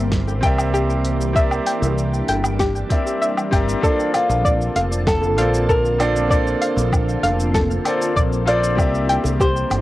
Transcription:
Already playing: fretless electric bass G1, string machine E3 G3 A#3 C4 G4, grand piano C4 G4 A#4 D5 E5, synth arpeggio sound G5
0.12 kick, snare, shaker
0.27 high bongo, shaker
0.41 fretless electric bass C2, grand piano C4 G4 A#4 D5, synth arpeggio sound G5, kick, open hi-hat
0.46 grand piano E5
0.58 low woodblock, shaker
0.74 synth arpeggio sound G4, shaker
0.90 shaker
1.05 open hi-hat
1.21 shaker
1.33 grand piano C4 G4 A#4 D5, string machine D4, synth arpeggio sound E5, kick, shaker
1.38 grand piano E5
1.51 low woodblock, shaker
1.66 synth arpeggio sound G5, open hi-hat
1.82 fretless electric bass C2, high bongo, shaker
1.98 shaker
2.14 shaker
2.28 fretless electric bass G1, synth arpeggio sound G5, open hi-hat, high bongo
2.44 low woodblock, shaker
2.59 synth arpeggio sound G4, kick, snare, shaker
2.76 shaker
2.89 grand piano C4 G4 A#4 D5 E5, kick, open hi-hat
3.07 shaker
3.21 synth arpeggio sound E5, shaker
3.37 low woodblock, shaker
3.51 fretless electric bass G1, grand piano C4 G4 A#4 D5 E5, synth arpeggio sound G5, kick, open hi-hat
3.69 shaker
3.81 string machine D3 A#3 C4 F4 A5, grand piano A#3 F4 A4 C5, nylon-string guitar D4, synth arpeggio sound A4, kick, shaker
3.85 grand piano D5
4.00 shaker
4.14 nylon-string guitar F4, open hi-hat, low woodblock
4.29 fretless electric bass A#1, high bongo, shaker
4.45 synth arpeggio sound D5, kick, shaker
4.62 shaker
4.76 fretless electric bass F1, synth arpeggio sound F5, open hi-hat, high bongo
4.93 shaker
5.07 nylon-string guitar A4, kick, snare, low woodblock, shaker
5.22 high bongo, shaker
5.37 fretless electric bass A#1, grand piano A#3 F4 A4 C5 D5, synth arpeggio sound F5, open hi-hat
5.54 shaker
5.69 synth arpeggio sound A4, nylon-string guitar A#4, kick, shaker
5.85 shaker
5.99 grand piano A#3 F4 A4 C5 D5, nylon-string guitar D4, open hi-hat, low woodblock
6.16 shaker
6.28 grand piano A#3 F4 A4 C5, synth arpeggio sound D5, kick, shaker
6.33 grand piano D5
6.47 shaker
6.62 synth arpeggio sound F5, open hi-hat
6.76 fretless electric bass A#1, high bongo, shaker
6.92 kick, low woodblock, shaker
7.09 shaker
7.23 fretless electric bass F1, synth arpeggio sound F5, open hi-hat, high bongo
7.40 shaker
7.54 synth arpeggio sound A4, kick, snare, shaker
7.71 shaker
7.84 grand piano A#3 F4 A4 C5 D5, open hi-hat, low woodblock
8.02 shaker
8.16 fretless electric bass A#1, synth arpeggio sound D5, kick, shaker
8.33 shaker
8.45 grand piano A#3 F4 A4 C5 D5, nylon-string guitar D5, synth arpeggio sound F5, open hi-hat
8.64 shaker
8.75 fretless electric bass C2, string machine C3 E3 G3 E4, grand piano C4 G4 A#4 D5, kick, low woodblock, shaker
8.80 grand piano E5
8.95 shaker
9.09 synth arpeggio sound G5, open hi-hat
9.24 fretless electric bass C2, high bongo, shaker
9.40 synth arpeggio sound G4, nylon-string guitar C5, kick, shaker
9.56 shaker
9.70 fretless electric bass G1, open hi-hat, high bongo, low woodblock

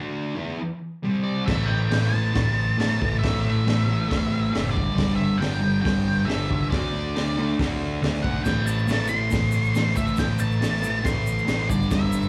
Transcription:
Already playing: distorted electric guitar D3 A3 D4
0.36 distorted electric guitar E3 B3 E4
1.03 distorted electric guitar C3 G3 C4
1.24 lead electric guitar D5
1.46 picked electric bass A1, distorted electric guitar A2 E3 A3, lead electric guitar E5, kick, snare, crash
1.66 lead electric guitar G5
1.70 picked electric bass A1
1.91 picked electric bass A1, distorted electric guitar A2 E3 A3, snare, open hi-hat
2.06 lead electric guitar A5
2.13 distorted electric guitar A2 E3 A3
2.34 picked electric bass A1, distorted electric guitar A2 E3 A3, kick, snare, open hi-hat
2.78 picked electric bass A1, distorted electric guitar A2 E3 A3, snare, open hi-hat
3.01 picked electric bass A1, distorted electric guitar A2 E3 A3, kick
3.19 distorted electric guitar A2, lead electric guitar E5
3.23 picked electric bass A1, distorted electric guitar E3 A3, kick, snare, open hi-hat
3.42 lead electric guitar E5
3.46 picked electric bass A1
3.66 picked electric bass A1, distorted electric guitar A2 E3 A3, snare, open hi-hat
3.87 distorted electric guitar A2 E3 A3
4.08 picked electric bass A1, distorted electric guitar A2 E3 A3, kick, snare, open hi-hat
4.51 distorted electric guitar A2 E3 A3, open hi-hat
4.56 picked electric bass F#1, snare
4.71 distorted electric guitar G2 D3 G3, lead electric guitar D5
4.77 picked electric bass G1, kick
4.95 distorted electric guitar G2 D3 G3, kick, snare, open hi-hat
4.99 picked electric bass G1
5.16 lead electric guitar E5
5.22 picked electric bass G1
5.37 distorted electric guitar G2 D3 G3, lead electric guitar G5
5.42 picked electric bass G1, snare, open hi-hat
5.62 distorted electric guitar G2 D3 G3
5.82 picked electric bass G1, distorted electric guitar G2 D3 G3, lead electric guitar G5, kick
5.86 snare, open hi-hat
6.25 picked electric bass G1, distorted electric guitar G2 D3 G3, lead electric guitar E5
6.29 snare, open hi-hat
6.49 picked electric bass C2, distorted electric guitar G2 D3 G3, kick
6.70 picked electric bass D2, distorted electric guitar D3 A3 D4, lead electric guitar D5, kick, snare, open hi-hat
6.94 picked electric bass D2
7.15 picked electric bass D2, distorted electric guitar D3 A3 D4, snare, open hi-hat
7.38 distorted electric guitar D3 A3 D4
7.59 picked electric bass D2, distorted electric guitar D3 A3 D4, kick, snare, open hi-hat
8.02 picked electric bass D2, distorted electric guitar D3 A3 D4, snare, open hi-hat
8.23 picked electric bass B1, distorted electric guitar D3 A3, lead electric guitar F#5, kick
8.27 distorted electric guitar D4
8.44 picked electric bass A1, distorted electric guitar A2 E3 A3, lead electric guitar G5, kick, snare, crash, shaker
8.66 picked electric bass A1, lead electric guitar A5, shaker
8.78 shaker
8.88 picked electric bass A1, distorted electric guitar A2 E3 A3, snare, open hi-hat, shaker
9.08 distorted electric guitar A2 E3 A3, lead electric guitar C6, shaker
9.31 picked electric bass A1, distorted electric guitar A2 E3 A3, kick, snare, open hi-hat, shaker
9.52 shaker
9.65 shaker
9.75 picked electric bass A1, distorted electric guitar A2 E3 A3, snare, open hi-hat, shaker
9.96 picked electric bass A1, distorted electric guitar A2 E3 A3, lead electric guitar E5, kick, shaker
10.07 shaker
10.17 picked electric bass A1, distorted electric guitar A2 E3 A3, lead electric guitar G5, kick, snare, open hi-hat, shaker
10.39 picked electric bass A1, lead electric guitar A5, shaker
10.52 shaker
10.62 picked electric bass A1, distorted electric guitar A2 E3 A3, snare, open hi-hat, shaker
10.82 distorted electric guitar A2 E3 A3, shaker
11.03 picked electric bass A1, distorted electric guitar A2 E3 A3, lead electric guitar C6, kick, snare, open hi-hat, shaker
11.27 shaker
11.38 shaker
11.46 picked electric bass A1, distorted electric guitar A2 E3 A3, snare, open hi-hat, shaker
11.69 picked electric bass G1, distorted electric guitar G2 D3 G3, lead electric guitar D5, kick, shaker
11.82 shaker
11.90 picked electric bass G1, distorted electric guitar G2 D3 G3, lead electric guitar E5, kick, snare, open hi-hat, shaker
12.13 picked electric bass G1, shaker
12.22 shaker

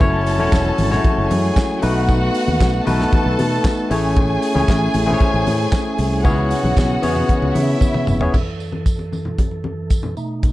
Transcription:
Already playing: tonewheel organ E4
0.00 fingered electric bass F#1, tonewheel organ F#3 A3, tine electric piano A3 C#4 E4 F#4 C#5, violin section A4 A5, kick, closed hi-hat, tambourine, muted conga, low conga
0.26 open hi-hat, tambourine
0.39 fingered electric bass E1, tine electric piano A3 C#4 E4 F#4 C#5, high conga
0.52 fingered electric bass E1, kick, snare, clap, closed hi-hat, tambourine
0.65 muted conga
0.78 fingered electric bass G#1, open hi-hat, tambourine, high conga
0.90 tine electric piano G#3 C#4 E4 F#4 C#5, snare, low conga
0.97 tine electric piano A3
1.04 kick, closed hi-hat, tambourine, high conga
1.18 fingered electric bass F#1
1.30 fingered electric bass F#2, violin section G#4 G#5, open hi-hat, tambourine, high conga
1.56 kick, snare, clap, closed hi-hat, tambourine
1.82 fingered electric bass B1, tine electric piano A3 B3 D#4 F#4 B4, tonewheel organ A3 B3 D#4, violin section F#4 F#5, open hi-hat, tambourine
2.09 kick, closed hi-hat, tambourine, muted conga, low conga
2.35 open hi-hat, tambourine
2.47 fingered electric bass D#2, high conga
2.60 fingered electric bass B1, kick, snare, clap, closed hi-hat, tambourine, muted conga
2.74 muted conga
2.86 fingered electric bass B1, tine electric piano A3 B3 D#4 F#4 B4, violin section A4 A5, open hi-hat, tambourine, high conga
3.00 snare, low conga
3.13 kick, closed hi-hat, tambourine, muted conga, high conga
3.26 fingered electric bass B1
3.39 fingered electric bass B2, open hi-hat, high conga
3.64 kick, snare, clap, closed hi-hat, tambourine, muted conga
3.90 fingered electric bass A1, tine electric piano A3 C#4 E4 G#4 C#5, tonewheel organ C#4 G#4, violin section G#4 G#5, open hi-hat, tambourine
4.16 kick, closed hi-hat, tambourine, low conga
4.42 open hi-hat, tambourine
4.54 fingered electric bass C#2, tine electric piano A3 C#4 E4 G#4 C#5, high conga
4.68 fingered electric bass A1, kick, snare, clap, closed hi-hat, tambourine, muted conga
4.94 fingered electric bass A1, open hi-hat, tambourine, high conga
5.06 tine electric piano A3 C#4 E4 G#4 C5, low conga
5.13 tine electric piano C#5
5.20 kick, closed hi-hat, tambourine, high conga
5.34 fingered electric bass A1
5.46 fingered electric bass A2, open hi-hat, tambourine, high conga
5.72 kick, snare, clap, closed hi-hat, tambourine, muted conga
5.98 fingered electric bass C2, open hi-hat, tambourine
6.24 fingered electric bass C#2, tonewheel organ C#3 B3 E4, tine electric piano B3 C#4 E4 G#4 C#5, violin section F#4 F#5, kick, closed hi-hat, tambourine, low conga
6.38 muted conga
6.51 open hi-hat, tambourine
6.63 fingered electric bass B1, high conga
6.77 fingered electric bass B1, kick, snare, clap, closed hi-hat, tambourine
6.90 muted conga
7.02 fingered electric bass E2, tine electric piano B3 C#4 E4 G#4 C#5, open hi-hat, tambourine, high conga
7.16 low conga
7.29 kick, closed hi-hat, tambourine, high conga
7.42 fingered electric bass C#2, muted conga
7.55 fingered electric bass C#3, violin section E4 E5, open hi-hat, high conga
7.81 kick, high tom, tambourine, muted conga
7.94 mid tom, muted conga, high conga
8.07 fingered electric bass F1, mid tom, tambourine
8.20 tine electric piano B3 C#4 E4 G#4 C#5, floor tom
8.34 tonewheel organ F#2 E3 A4, kick, crash, tambourine, muted conga, low conga
8.60 tambourine
8.72 high conga
8.86 kick, closed hi-hat, tambourine, muted conga
8.99 muted conga
9.13 tambourine, high conga
9.25 low conga
9.38 kick, closed hi-hat, tambourine, muted conga, high conga
9.51 muted conga
9.64 high conga
9.90 kick, closed hi-hat, tambourine, muted conga
10.03 high conga, low conga
10.17 tonewheel organ B2 A3 D#4, tambourine
10.43 kick, closed hi-hat, tambourine, low conga

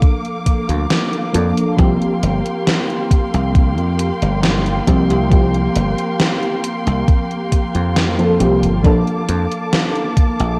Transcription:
Already playing: fm electric piano F3 A#3 D4 A4, string section A#3 F5 D6
0.02 kick, closed hi-hat
0.25 closed hi-hat
0.46 kick, closed hi-hat
0.69 slap bass D2, closed hi-hat
0.90 snare, closed hi-hat
1.13 closed hi-hat
1.33 slap bass F2, fm electric piano F3 A#3 D4 A4, closed hi-hat
1.57 closed hi-hat
1.77 slap bass C2, fm electric piano F3 A#3 C4 G4, string section G5 C6, kick, closed hi-hat
2.02 closed hi-hat
2.23 slap bass G1, closed hi-hat
2.46 closed hi-hat
2.67 snare, closed hi-hat
2.90 closed hi-hat
3.11 kick, closed hi-hat
3.34 slap bass C2, closed hi-hat
3.55 kick, closed hi-hat
3.78 slap bass F2, closed hi-hat
3.99 closed hi-hat
4.22 slap bass G1, closed hi-hat
4.43 snare, closed hi-hat
4.66 closed hi-hat
4.87 slap bass C2, fm electric piano F3 A#3 C4 G4, kick, closed hi-hat
5.10 slap bass C2, closed hi-hat
5.29 fm electric piano F3 A#3 C4 G4, kick, closed hi-hat
5.54 closed hi-hat
5.76 slap bass G1, closed hi-hat
5.98 closed hi-hat
6.20 snare, closed hi-hat
6.43 closed hi-hat
6.64 closed hi-hat
6.87 slap bass C2, closed hi-hat
7.08 kick, closed hi-hat
7.31 closed hi-hat
7.52 kick, closed hi-hat
7.75 slap bass F2, closed hi-hat
7.96 snare, closed hi-hat
8.18 fm electric piano F3 A#3 C4 A4, closed hi-hat
8.40 slap bass C2, fm electric piano F3 A#3 C4 G4, closed hi-hat
8.63 slap bass G1, closed hi-hat
8.83 slap bass A#1, fm electric piano F3 A#3 D4 A4, string section A5 D6, kick, closed hi-hat
9.07 closed hi-hat
9.29 slap bass F2, closed hi-hat
9.52 closed hi-hat
9.73 snare, closed hi-hat
9.95 closed hi-hat
10.17 kick, closed hi-hat
10.40 slap bass A#1, closed hi-hat

